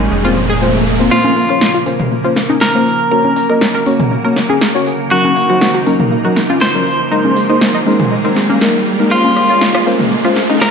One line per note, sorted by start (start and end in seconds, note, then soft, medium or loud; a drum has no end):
0.00 0.10 A#2 medium
0.00 0.10 D#3 medium
0.00 0.10 G#3 medium
0.00 1.02 C#4 medium
0.00 0.10 D#4 medium
0.00 0.10 G#4 medium
0.00 riser medium
0.11 1.09 F1 medium
0.11 1.11 A#2 medium
0.11 1.10 F3 medium
0.11 0.22 G#3 medium
0.11 1.10 A#3 medium
0.11 1.11 F4 medium
0.11 1.10 A#4 medium
0.25 0.36 A#3 medium
0.25 0.36 C4 medium
0.25 0.36 F4 medium
0.25 0.34 F4 medium
0.25 0.36 C5 medium
0.36 0.47 F3 medium
0.50 1.02 G#4 medium
0.61 0.74 A#3 loud
0.61 0.74 C4 medium
0.61 0.74 F4 medium
0.61 0.74 C5 loud
1.00 1.10 A#3 loud
1.00 1.10 C4 medium
1.00 1.10 F4 medium
1.00 1.10 C5 loud
1.11 3.09 C#3 medium
1.11 3.09 F3 medium
1.11 3.09 A#3 medium
1.11 1.30 A#3 medium
1.11 1.30 C#4 medium
1.11 3.09 C#4 medium
1.11 1.22 F4 loud
1.11 1.30 F4 medium
1.11 1.77 F4 medium
1.11 10.71 A#4 medium
1.11 1.30 C5 medium
1.11 riser medium
1.25 1.34 A#3 medium
1.25 high conga medium
1.36 1.47 A#3 medium
1.36 open hi-hat loud
1.50 1.84 A#3 medium
1.50 1.84 C#4 medium
1.50 1.59 F4 medium
1.50 1.84 F4 medium
1.50 1.84 C#5 medium
1.61 1.72 A#3 medium
1.61 snare loud
1.74 1.84 F4 medium
1.86 1.97 A#3 medium
1.86 1.99 A#3 medium
1.86 1.99 C#4 medium
1.86 1.99 F4 medium
1.86 1.99 C5 medium
1.86 open hi-hat medium
1.86 high conga medium
2.00 2.09 A#3 medium
2.00 mid tom medium
2.11 2.22 A#3 medium
2.25 2.36 A#3 medium
2.25 2.36 C#4 medium
2.25 2.34 F4 medium
2.25 2.36 F4 medium
2.25 2.36 C5 medium
2.36 2.47 A#3 medium
2.36 snare medium
2.36 open hi-hat loud
2.50 3.02 D#4 loud
2.50 high conga medium
2.61 5.02 A#4 medium
2.61 snare loud
2.75 2.86 A#3 medium
2.75 2.86 C#4 medium
2.75 2.86 F4 medium
2.75 2.86 C5 loud
2.86 open hi-hat medium
3.11 7.07 C#3 medium
3.11 7.07 F#3 medium
3.11 5.09 A#3 medium
3.11 3.30 A#3 medium
3.11 3.30 C#4 medium
3.11 5.09 F#4 medium
3.11 3.30 F#4 medium
3.11 3.22 A#4 loud
3.11 3.30 C#5 medium
3.25 3.34 C#4 medium
3.25 high conga medium
3.36 3.47 C#4 medium
3.36 open hi-hat loud
3.50 3.84 A#3 medium
3.50 3.84 C#4 medium
3.50 3.84 F#4 medium
3.50 3.59 A#4 medium
3.50 3.84 D#5 medium
3.61 3.72 C#4 medium
3.61 snare loud
3.75 3.84 A#4 medium
3.86 3.99 A#3 medium
3.86 3.99 C#4 medium
3.86 3.97 C#4 medium
3.86 3.99 F#4 medium
3.86 3.99 C#5 medium
3.86 open hi-hat medium
3.86 high conga medium
4.00 4.09 C#4 medium
4.00 mid tom medium
4.11 4.22 C#4 medium
4.25 4.36 A#3 medium
4.25 4.36 C#4 medium
4.25 4.36 F#4 medium
4.25 4.34 A#4 medium
4.25 4.36 C#5 medium
4.36 4.47 C#4 medium
4.36 snare medium
4.36 open hi-hat loud
4.49 5.02 G#4 medium
4.49 high conga medium
4.61 snare loud
4.75 4.86 A#3 loud
4.75 4.86 C#4 medium
4.75 4.86 F#4 medium
4.75 4.86 C#5 loud
4.86 open hi-hat medium
5.11 5.30 F#3 medium
5.11 9.07 A#3 medium
5.11 5.30 C#4 medium
5.11 7.09 D#4 medium
5.11 5.30 D#4 medium
5.11 5.77 F#4 loud
5.11 5.22 F#4 loud
5.11 5.30 A#4 medium
5.25 5.34 A#3 medium
5.25 high conga medium
5.36 5.47 A#3 medium
5.36 open hi-hat loud
5.50 5.84 F#3 medium
5.50 5.84 C#4 medium
5.50 5.84 D#4 medium
5.50 5.59 F#4 medium
5.50 5.84 C5 medium
5.61 5.72 A#3 medium
5.61 snare loud
5.75 5.84 F#4 medium
5.86 5.99 F#3 medium
5.86 5.97 A#3 medium
5.86 5.99 C#4 medium
5.86 5.99 D#4 medium
5.86 5.99 A#4 medium
5.86 open hi-hat loud
5.86 high conga medium
6.00 6.09 A#3 medium
6.00 mid tom medium
6.11 6.22 A#3 medium
6.25 6.36 F#3 medium
6.25 6.36 C#4 medium
6.25 6.36 D#4 medium
6.25 6.34 F#4 medium
6.25 6.36 A#4 medium
6.36 6.47 A#3 medium
6.36 snare medium
6.36 open hi-hat loud
6.50 7.02 F4 medium
6.50 high conga medium
6.61 9.02 C5 medium
6.61 snare loud
6.75 6.86 F#3 loud
6.75 6.86 C#4 medium
6.75 6.86 D#4 medium
6.75 6.86 A#4 loud
6.86 open hi-hat medium
7.11 9.09 D#3 medium
7.11 7.30 G#3 medium
7.11 9.09 G#3 medium
7.11 7.30 A#3 medium
7.11 7.22 D#4 loud
7.11 7.30 D#4 medium
7.11 9.09 G#4 medium
7.11 7.30 A#4 medium
7.25 7.34 G#3 medium
7.25 high conga medium
7.36 7.47 G#3 medium
7.36 open hi-hat loud
7.50 7.84 G#3 medium
7.50 7.84 A#3 medium
7.50 7.84 D#4 medium
7.50 7.59 D#4 medium
7.50 7.84 C5 medium
7.61 7.72 G#3 medium
7.61 snare loud
7.75 7.84 D#4 medium
7.86 7.99 G#3 medium
7.86 7.97 G#3 medium
7.86 7.99 A#3 medium
7.86 7.99 D#4 medium
7.86 7.99 A#4 medium
7.86 open hi-hat medium
7.86 high conga medium
8.00 8.09 G#3 medium
8.00 mid tom medium
8.11 8.22 G#3 medium
8.25 8.36 G#3 medium
8.25 8.36 A#3 medium
8.25 8.34 C4 medium
8.25 8.36 D#4 medium
8.25 8.36 A#4 medium
8.36 8.47 G#3 medium
8.36 snare medium
8.36 open hi-hat loud
8.50 9.02 A#3 medium
8.50 high conga medium
8.61 8.74 G#3 medium
8.61 8.74 A#3 medium
8.61 8.74 D#4 medium
8.61 8.74 A#4 loud
8.61 snare loud
8.86 open hi-hat medium
9.00 9.10 G#3 loud
9.00 9.10 A#3 medium
9.00 9.10 D#4 medium
9.00 9.10 A#4 loud
9.11 10.71 C#3 medium
9.11 9.30 A#3 medium
9.11 10.71 A#3 medium
9.11 9.30 C#4 medium
9.11 9.77 F4 loud
9.11 10.71 F4 medium
9.11 9.30 F4 medium
9.11 9.22 F4 loud
9.11 9.30 C5 medium
9.25 9.34 A#3 medium
9.25 high conga medium
9.36 9.47 A#3 medium
9.36 cross-stick soft
9.36 open hi-hat loud
9.50 9.84 A#3 medium
9.50 9.84 C#4 medium
9.50 9.84 F4 medium
9.50 9.59 F4 medium
9.50 9.84 C#5 medium
9.61 9.72 A#3 medium
9.61 snare loud
9.75 9.84 F4 medium
9.75 cross-stick medium
9.86 9.97 A#3 medium
9.86 9.99 A#3 medium
9.86 9.99 C#4 medium
9.86 9.99 F4 medium
9.86 9.99 C5 medium
9.86 open hi-hat medium
9.86 high conga medium
10.00 10.09 A#3 medium
10.00 mid tom medium
10.12 10.22 A#3 medium
10.25 10.36 A#3 medium
10.25 10.36 C#4 medium
10.25 10.36 F4 medium
10.25 10.34 F4 medium
10.25 10.36 C5 medium
10.25 cross-stick soft
10.36 10.47 A#3 medium
10.36 snare medium
10.36 open hi-hat loud
10.50 10.71 D#4 loud
10.50 high conga medium
10.61 10.71 A#4 medium
10.61 cross-stick medium
10.61 snare loud